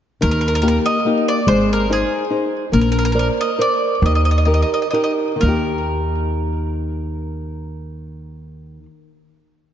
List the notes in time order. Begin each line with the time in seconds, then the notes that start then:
0.21 D#2 D#3 A#4
0.31 A#4
0.41 A#4
0.48 A#4
0.55 A#4
0.62 A#3 D#4 G4 A#4
0.68 A#4
0.86 D#5
1.05 A#3 D#4 G4
1.28 D5
1.47 G#1 G#3 C5
1.73 A#4
1.90 D#4 G#4 C5
2.30 D#4 G#4 C5
2.72 A#1 A#3 A#4
2.81 A#4
2.92 A#4
2.99 A#4
3.05 A#4
3.12 A#4 C5 D5
3.19 A#4
3.41 D#5
3.58 A#4 C5 D5
4.02 D#2 D#3
4.06 D#5
4.15 D#5
4.25 D#5
4.31 D#5
4.38 D#5
4.45 D#4 G4 A#4 D#5
4.54 D#5
4.62 D#5
4.74 D#5
4.82 D#5
4.91 D#4 G4 A#4 D#5
5.04 D#5
5.36 D#3 A#3
5.41 D#2 D#4 A#4
5.48 G4